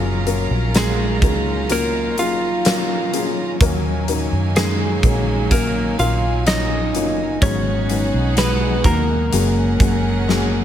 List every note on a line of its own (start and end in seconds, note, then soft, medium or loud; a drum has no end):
0.00 0.47 F#1 medium
0.00 0.26 F#3 loud
0.00 3.56 F#3 medium
0.00 0.26 A#3 loud
0.00 0.26 C#4 loud
0.00 7.38 C#4 medium
0.00 3.57 D#4 medium
0.00 0.27 F4 loud
0.00 3.56 F4 medium
0.00 0.25 G#4 loud
0.00 0.27 A#4 medium
0.00 3.56 A#4 medium
0.00 3.56 F5 medium
0.00 3.56 A#5 medium
0.26 0.72 F#3 medium
0.26 0.72 A#3 medium
0.26 0.72 C#4 medium
0.26 0.72 F4 medium
0.26 0.72 A#4 loud
0.26 closed hi-hat medium
0.51 1.22 A#1 medium
0.74 1.20 F#3 medium
0.74 1.67 G#3 medium
0.74 1.20 A#3 medium
0.74 1.20 C#4 medium
0.74 1.20 F4 medium
0.74 1.20 A#4 medium
0.74 snare loud
0.74 closed hi-hat medium
0.78 1.74 G#4 medium
1.22 2.18 C#2 medium
1.22 1.68 F#3 medium
1.22 1.68 A#3 medium
1.22 1.68 C#4 medium
1.22 1.68 F4 medium
1.22 1.68 A#4 medium
1.22 kick loud
1.22 closed hi-hat medium
1.70 2.15 F#3 loud
1.70 2.15 A#3 medium
1.70 2.15 C#4 medium
1.70 2.15 F4 medium
1.70 2.16 A#4 loud
1.70 2.20 A#4 medium
1.70 closed hi-hat loud
2.18 3.56 F#1 medium
2.18 2.63 F#3 medium
2.18 2.63 A#3 medium
2.18 2.64 C#4 medium
2.18 3.57 F4 medium
2.18 2.64 F4 medium
2.18 2.64 G#4 medium
2.18 3.57 F5 medium
2.18 closed hi-hat medium
2.65 3.11 F#3 medium
2.65 3.10 A#3 medium
2.65 3.11 C#4 medium
2.65 3.11 F4 medium
2.65 3.11 A#4 medium
2.65 snare loud
2.65 closed hi-hat loud
3.13 3.58 F#3 medium
3.13 3.58 A#3 medium
3.13 3.58 C#4 medium
3.13 3.58 F4 medium
3.13 3.59 G#4 medium
3.13 closed hi-hat medium
3.60 4.28 D#2 loud
3.60 7.37 D#3 medium
3.60 5.00 D#3 medium
3.60 7.38 F#3 medium
3.60 4.06 F#3 loud
3.60 7.38 A#3 medium
3.60 4.06 A#3 loud
3.60 4.06 C#4 loud
3.60 7.37 D#4 medium
3.60 4.06 D#4 loud
3.60 4.06 A#4 loud
3.60 7.37 C#5 medium
3.60 7.37 G#5 medium
3.60 kick loud
3.60 closed hi-hat loud
4.08 4.53 F#3 medium
4.08 4.54 A#3 medium
4.08 4.54 C#4 medium
4.08 4.54 D#4 medium
4.08 4.54 A#4 loud
4.08 closed hi-hat medium
4.32 5.05 F#2 medium
4.56 5.01 F#3 medium
4.56 5.48 G#3 medium
4.56 5.01 A#3 medium
4.56 5.01 C#4 medium
4.56 5.01 D#4 medium
4.56 5.54 G#4 medium
4.56 5.01 A#4 medium
4.56 snare loud
4.56 closed hi-hat loud
5.03 5.94 A#1 medium
5.03 5.49 F#3 medium
5.03 5.49 A#3 medium
5.03 5.49 C#4 medium
5.03 5.49 D#4 medium
5.03 5.49 A#4 medium
5.03 kick loud
5.03 closed hi-hat medium
5.51 5.96 F#3 loud
5.51 5.96 A#3 medium
5.51 5.96 C#4 medium
5.51 5.97 D#4 medium
5.51 5.96 A#4 medium
5.51 5.97 A#4 loud
5.51 kick medium
5.51 closed hi-hat loud
5.99 6.95 A#1 medium
5.99 6.44 F#3 medium
5.99 6.44 A#3 medium
5.99 6.44 C#4 medium
5.99 6.44 D#4 medium
5.99 6.43 F4 medium
5.99 6.44 A#4 medium
5.99 6.47 F5 medium
5.99 closed hi-hat medium
6.47 6.92 F#3 medium
6.47 6.92 A#3 medium
6.47 6.92 C#4 medium
6.47 7.38 D#4 medium
6.47 6.92 D#4 medium
6.47 6.92 F4 medium
6.47 7.42 D#5 loud
6.47 snare loud
6.47 closed hi-hat medium
6.94 7.39 F#1 medium
6.94 7.39 F#3 medium
6.94 7.40 A#3 medium
6.94 7.40 C#4 medium
6.94 7.40 D#4 medium
6.94 7.40 F4 medium
6.94 closed hi-hat medium
7.42 8.09 G#1 loud
7.42 8.81 G#2 medium
7.42 7.87 F#3 loud
7.42 9.30 G#3 medium
7.42 7.87 G#3 medium
7.42 7.87 B3 medium
7.42 8.33 C#4 medium
7.42 9.28 D#4 medium
7.42 9.30 D#4 medium
7.42 7.88 D#4 medium
7.42 9.30 F#4 medium
7.42 9.30 G#4 medium
7.42 9.28 G#4 medium
7.42 7.87 G#4 loud
7.42 8.38 C#5 medium
7.42 9.28 F#5 loud
7.42 kick loud
7.42 closed hi-hat loud
7.90 8.35 F#3 medium
7.90 8.35 G#3 medium
7.90 8.35 B3 medium
7.90 8.35 D#4 medium
7.90 8.35 B4 medium
7.90 closed hi-hat medium
8.14 8.81 B1 loud
8.37 8.82 F#3 medium
8.37 8.82 G#3 medium
8.37 8.82 B3 medium
8.37 8.82 D#4 medium
8.37 8.82 G#4 medium
8.37 8.85 B4 medium
8.37 snare loud
8.37 closed hi-hat loud
8.84 9.29 D#2 medium
8.84 9.30 B2 medium
8.84 9.30 F#3 medium
8.84 9.30 G#3 medium
8.84 10.64 A#3 medium
8.84 9.30 D#4 medium
8.84 10.64 A#4 medium
8.84 9.30 A#4 medium
8.84 kick medium
8.84 closed hi-hat medium
9.32 9.77 F#1 loud
9.32 9.78 F#3 loud
9.32 10.64 F#3 medium
9.32 9.78 G#3 medium
9.32 9.78 A#3 medium
9.32 10.64 C#4 medium
9.32 9.78 C#4 medium
9.32 10.64 C#4 medium
9.32 9.78 G#4 loud
9.32 10.64 G#4 medium
9.32 10.64 A#4 medium
9.32 10.64 F#5 medium
9.32 closed hi-hat loud
9.80 10.64 F#1 medium
9.80 10.25 F#3 medium
9.80 10.25 G#3 medium
9.80 10.25 A#3 medium
9.80 10.25 C#4 medium
9.80 10.25 G#4 medium
9.80 kick loud
9.80 closed hi-hat medium
10.28 10.64 F#3 loud
10.28 10.64 G#3 medium
10.28 10.64 A#3 medium
10.28 10.64 C#4 medium
10.28 10.64 G#4 loud
10.28 snare medium